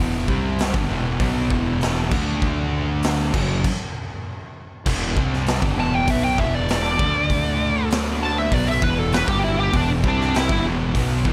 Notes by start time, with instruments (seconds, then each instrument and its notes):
Already playing: fingered electric bass E1, distorted electric guitar E2 B2
0.00 distorted electric guitar E3
0.28 fingered electric bass C2, distorted electric guitar C3 G3 C4, kick
0.59 snare, open hi-hat
0.74 fingered electric bass G1, distorted electric guitar G2 D3, kick
0.89 fingered electric bass E1, distorted electric guitar E2 B2 E3
1.20 fingered electric bass B1, distorted electric guitar B2 F#3 B3, kick, open hi-hat
1.50 fingered electric bass E1, distorted electric guitar E2 B2 E3, kick
1.81 snare, open hi-hat
2.11 fingered electric bass D2, distorted electric guitar D3 A3 D4, kick, crash
2.42 kick
3.03 snare, open hi-hat
3.33 fingered electric bass F#1, distorted electric guitar F#2 C#3 F#3, kick, crash
3.64 kick, crash
4.86 fingered electric bass E1, distorted electric guitar E2 B2 E3, kick, crash
5.16 fingered electric bass C2, distorted electric guitar C3 G3 C4, kick
5.34 snare
5.46 snare, open hi-hat
5.62 fingered electric bass G1, distorted electric guitar G2 D3, kick
5.77 fingered electric bass E1, distorted electric guitar E2 B2 E3, lead electric guitar A5
5.94 lead electric guitar G5
6.08 fingered electric bass B1, distorted electric guitar B2 F#3 B3, lead electric guitar E5, kick, open hi-hat
6.24 lead electric guitar G5
6.38 fingered electric bass E1, distorted electric guitar E2 B2 E3, lead electric guitar E5, kick
6.55 lead electric guitar D5
6.69 lead electric guitar D5, snare, open hi-hat
6.99 fingered electric bass D2, distorted electric guitar D3 A3 D4, kick
7.30 kick, open hi-hat
7.91 snare, open hi-hat
8.23 lead electric guitar A5
8.38 lead electric guitar E5
8.51 fingered electric bass B1, distorted electric guitar B2 F#3 B3, lead electric guitar D5, kick, open hi-hat
8.69 lead electric guitar E5
8.82 fingered electric bass E1, distorted electric guitar E2 B2 E3, lead electric guitar B4, kick
8.99 lead electric guitar A4
9.12 lead electric guitar B4, snare, open hi-hat
9.27 fingered electric bass G1, distorted electric guitar G2 D3 G3, lead electric guitar G4, kick
9.44 lead electric guitar E4
9.60 lead electric guitar G4
9.73 fingered electric bass E1, distorted electric guitar E2 B2 E3, lead electric guitar D4, kick, open hi-hat
10.03 fingered electric bass C2, distorted electric guitar C3 G3 C4, kick
10.08 lead electric guitar D4
10.21 snare
10.34 lead electric guitar E4, snare, open hi-hat
10.49 fingered electric bass G1, distorted electric guitar G2 D3, kick
10.63 fingered electric bass E1, distorted electric guitar E2 B2 E3
10.95 fingered electric bass B1, distorted electric guitar B2 F#3 B3, kick, open hi-hat
11.25 fingered electric bass E1, distorted electric guitar E2 B2 E3, kick